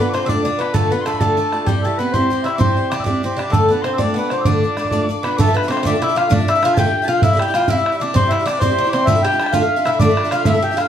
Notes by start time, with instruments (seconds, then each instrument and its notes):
0.00 bouzouki B3, steel-string acoustic guitar D4 F4 A4 D5, accordion B4, bagpipes B5, bodhran
0.09 steel-string acoustic guitar D4, accordion C5, bagpipes D6
0.14 bouzouki C4, steel-string acoustic guitar F4 A4 D5, bagpipes C6, bodhran
0.26 bouzouki D4, accordion D5, steel-string acoustic guitar D5, bagpipes D6 E6, bodhran
0.30 steel-string acoustic guitar D3 A3 D4 F4 A4
0.43 steel-string acoustic guitar D4 F4 A4, bouzouki D4, accordion D5, bodhran
0.48 steel-string acoustic guitar D5
0.58 bouzouki B3, steel-string acoustic guitar D4 F4 A4 D5, accordion B4, bagpipes B5, bodhran
0.73 steel-string acoustic guitar D3 A3 D4 F4 A4 D5, bouzouki A3, accordion A4, bagpipes A5, bodhran
0.90 bouzouki B3, steel-string acoustic guitar D4 F4 A4 D5, accordion B4, bagpipes B5, bodhran
1.01 accordion A4, bagpipes C6
1.06 bouzouki A3, steel-string acoustic guitar D4 F4 A4 D5, bodhran
1.10 bagpipes B5, bodhran
1.18 steel-string acoustic guitar D3 D4 F4 A4 D5, bouzouki A3, accordion A4, bagpipes A5, bodhran
1.22 steel-string acoustic guitar A3
1.37 steel-string acoustic guitar D4 F4 A4 D5, bodhran
1.53 steel-string acoustic guitar D4 F4 A4 D5, bodhran
1.66 bouzouki G3, steel-string acoustic guitar C4 E4 G4 D5, accordion G4, bagpipes G5, bodhran
1.82 bouzouki A3, accordion A4, steel-string acoustic guitar D5, bagpipes A5, bodhran
1.86 steel-string acoustic guitar E4 G4
1.97 bouzouki B3, steel-string acoustic guitar C4 E4 G4 D5, accordion B4, bagpipes B5
2.12 bouzouki C4, steel-string acoustic guitar C4 E4 G4 D5, accordion C5, bagpipes C6, bodhran
2.30 steel-string acoustic guitar C4 E4 G4 D5, bodhran
2.44 bouzouki E4, steel-string acoustic guitar G4 D5, accordion E5, bagpipes E5, bodhran
2.48 steel-string acoustic guitar E4
2.56 bouzouki C4, steel-string acoustic guitar C4 E4 G4, accordion C5, bagpipes C6 D6
2.61 steel-string acoustic guitar D5, bodhran
2.76 steel-string acoustic guitar E4 G4 D5, bodhran
2.90 steel-string acoustic guitar C4 E4 G4 D5, bouzouki D4, accordion D5, bagpipes D6, bodhran
3.00 bagpipes E6, bodhran
3.04 steel-string acoustic guitar C4 E4 G4 D5, bouzouki D4, accordion D5, bagpipes D6, bodhran
3.23 steel-string acoustic guitar C4 E4 G4 D5, bouzouki C4, accordion C5, bodhran
3.37 bouzouki D4, steel-string acoustic guitar E4 G4 D5, accordion D5, bodhran
3.50 steel-string acoustic guitar D3 A3 D4 F4, bouzouki A3, accordion A4, bagpipes A5, bodhran
3.54 steel-string acoustic guitar A4 D5
3.69 bouzouki B3, steel-string acoustic guitar F4 A4 D5, accordion B4, bodhran
3.73 steel-string acoustic guitar D4
3.82 bouzouki C4, steel-string acoustic guitar D4 F4, accordion C5, bagpipes C6, bodhran
3.86 steel-string acoustic guitar A4 D5
3.93 bagpipes E6
3.98 steel-string acoustic guitar D3 A3 D4 F4 A4 D5, bouzouki D4, accordion D5, bagpipes D6, bodhran
4.14 bouzouki B3, steel-string acoustic guitar D4 F4 A4, accordion B4
4.19 steel-string acoustic guitar D5
4.30 bouzouki C4, steel-string acoustic guitar D4 F4 A4 D5, accordion C5, bodhran
4.41 bagpipes D6 E6
4.45 steel-string acoustic guitar D3 A3 D4 F4 A4 D5, bouzouki D4, accordion D5, bodhran
4.62 steel-string acoustic guitar D4 F4 A4 D5, bodhran
4.77 steel-string acoustic guitar D4 F4 A4 D5, bodhran
4.85 bodhran
4.91 steel-string acoustic guitar D3 A3 D4 F4 A4 D5, bodhran
5.09 steel-string acoustic guitar D4 F4 A4 D5, bodhran
5.23 bouzouki B3, steel-string acoustic guitar D4 F4 A4 D5, accordion B4, bagpipes B5, bodhran
5.37 steel-string acoustic guitar D3 A3 D4 F4 A4 E5, bouzouki A3, accordion A4, bagpipes D6, bodhran
5.41 bagpipes A5
5.48 steel-string acoustic guitar D4 F4 A4 E5
5.54 bouzouki B3, accordion B4, bagpipes B5, bodhran
5.63 steel-string acoustic guitar D4 F4 A4 E5
5.68 bouzouki C4, steel-string acoustic guitar D4 F4 A4, accordion C5, bagpipes C6 D6, bodhran
5.73 steel-string acoustic guitar E5, bodhran
5.83 steel-string acoustic guitar D3 A3 D4 F4 E5, bouzouki D4, accordion D5, bagpipes D6, bodhran
5.87 steel-string acoustic guitar A4
5.93 steel-string acoustic guitar D4 F4 A4 E5
6.02 bouzouki E4, accordion E5, bodhran
6.08 steel-string acoustic guitar D4 F4 A4 E5
6.15 steel-string acoustic guitar D4 F4 A4 E5, bouzouki F4, accordion F5, bagpipes F5, bodhran
6.29 steel-string acoustic guitar D3 A3 D4 F4 A4 E5, bouzouki D4, accordion D5, bagpipes D6, bodhran
6.39 steel-string acoustic guitar D4 F4 A4 E5
6.48 bouzouki E4, accordion E5, bagpipes E5, bodhran
6.55 steel-string acoustic guitar D4 F4 A4 E5
6.62 steel-string acoustic guitar D4 F4 A4 E5, bouzouki F4, accordion F5, bodhran
6.74 steel-string acoustic guitar D3 A3 D4 F4, bagpipes G5 A5, bodhran
6.78 bouzouki G4, steel-string acoustic guitar A4 E5, accordion G5
6.86 steel-string acoustic guitar D4 A4 E5
6.94 bodhran
7.02 steel-string acoustic guitar D4 F4 A4 E5, bagpipes A5
7.08 steel-string acoustic guitar D4 F4 A4 E5, bouzouki F4, bagpipes F5, accordion F5
7.19 bouzouki E4, bagpipes E5 G5, bodhran
7.24 steel-string acoustic guitar C4 E4 G4 D5, accordion E5
7.33 steel-string acoustic guitar E4 G4 D5, bouzouki A4
7.39 bouzouki G4, accordion G5, bagpipes G5, bodhran
7.48 steel-string acoustic guitar E4 G4 D5
7.54 steel-string acoustic guitar C4 E4 G4 D5, bouzouki F4, accordion F5, bodhran
7.60 bodhran
7.68 steel-string acoustic guitar C4 E4 G4 D5, bouzouki E4, accordion E5, bagpipes E5, bodhran
7.77 steel-string acoustic guitar E4 G4 D5
7.86 bodhran
7.92 steel-string acoustic guitar E4 G4 D5
7.98 steel-string acoustic guitar C4 E4, bouzouki D4, accordion D5 E5
8.02 steel-string acoustic guitar G4 D5, bagpipes D6
8.14 steel-string acoustic guitar C4 E4 G4 D5, bouzouki C4, accordion C5, bagpipes C6, bodhran
8.23 steel-string acoustic guitar E4 G4 D5
8.29 bouzouki E4, accordion E5, bagpipes E5, bodhran
8.39 steel-string acoustic guitar E4 G4 D5, bagpipes E6
8.45 steel-string acoustic guitar C4 E4 G4, bouzouki D4, accordion D5, bagpipes D6, bodhran
8.49 steel-string acoustic guitar D5
8.59 steel-string acoustic guitar C4 E4 G4, bouzouki C4, accordion C5, bagpipes C6, bodhran
8.64 steel-string acoustic guitar D5
8.69 steel-string acoustic guitar E4 G4 D5
8.79 bouzouki D4
8.84 steel-string acoustic guitar E4 G4 D5
8.90 steel-string acoustic guitar C4, bouzouki C4, accordion C5, bagpipes D6, bodhran
8.94 steel-string acoustic guitar E4 G4 D5, bagpipes C6
9.05 steel-string acoustic guitar D3 A3 D4 F4, bouzouki E4, accordion E5, bagpipes E5, bodhran
9.10 steel-string acoustic guitar A4 E5
9.15 steel-string acoustic guitar D4 F4 A4 E5
9.23 bouzouki G4, accordion G5, bagpipes G5, bodhran
9.32 steel-string acoustic guitar D4 F4 A4 E5
9.39 steel-string acoustic guitar D4 F4 A4 E5, bagpipes A5, bodhran
9.46 accordion G5, bagpipes G5, bodhran
9.52 steel-string acoustic guitar D3 A3 D4 F4 A4 E5, bouzouki F4, accordion F5, bagpipes F5, bodhran
9.61 steel-string acoustic guitar D4 F4 A4 E5
9.76 steel-string acoustic guitar D4 F4 A4 E5
9.85 steel-string acoustic guitar D4 F4 A4 E5, bouzouki E4, accordion E5, bagpipes E5, bodhran
9.99 steel-string acoustic guitar D3 A3 D4 F4 A4 E5, bouzouki D4, accordion D5, bagpipes D6, bodhran
10.09 steel-string acoustic guitar D4 F4 A4 E5
10.17 bodhran
10.24 steel-string acoustic guitar D4 F4 A4 E5
10.31 steel-string acoustic guitar D4 F4 A4 E5, bouzouki F4, accordion F5, bagpipes F5, bodhran
10.45 steel-string acoustic guitar D3 A3 D4 F4 A4 E5, bouzouki E4, bagpipes E5, accordion E5, bodhran
10.54 steel-string acoustic guitar D4 F4 A4 E5
10.62 bouzouki G4, accordion G5, bodhran
10.71 steel-string acoustic guitar D4 F4 A4 E5
10.76 steel-string acoustic guitar D4 F4 A4, bouzouki F4, accordion F5, bagpipes F5, bodhran
10.81 steel-string acoustic guitar E5